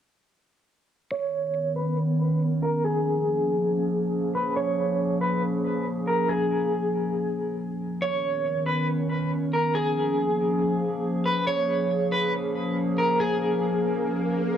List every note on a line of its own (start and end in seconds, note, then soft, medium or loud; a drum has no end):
1.11 2.82 D#3 medium
1.11 2.82 B3 medium
1.11 7.98 C#4 medium
1.11 2.82 A#4 medium
1.11 1.72 C#5 loud
1.76 1.96 B4 medium
2.63 2.83 A#4 medium
2.84 7.98 F3 medium
2.84 7.98 A#3 medium
2.84 7.98 G#4 medium
2.84 4.31 G#4 loud
4.35 4.55 B4 medium
4.56 5.17 C#5 medium
5.21 5.42 B4 medium
6.07 6.28 A#4 medium
6.29 7.55 G#4 medium
8.02 9.73 D#3 medium
8.02 9.73 B3 medium
8.02 11.44 C#4 medium
8.02 9.73 A#4 medium
8.02 8.63 C#5 loud
8.66 8.87 B4 medium
9.53 9.74 A#4 medium
9.74 11.45 F3 medium
9.74 11.45 A#3 medium
9.74 11.45 G#4 medium
9.74 11.22 G#4 loud
11.26 11.46 B4 medium
11.47 14.57 F3 medium
11.47 14.57 A#3 medium
11.47 14.57 C#4 medium
11.47 14.57 G#4 loud
11.47 12.08 C#5 medium
11.47 swell medium
12.12 12.32 B4 medium
12.98 13.19 A#4 medium
13.20 14.45 G#4 medium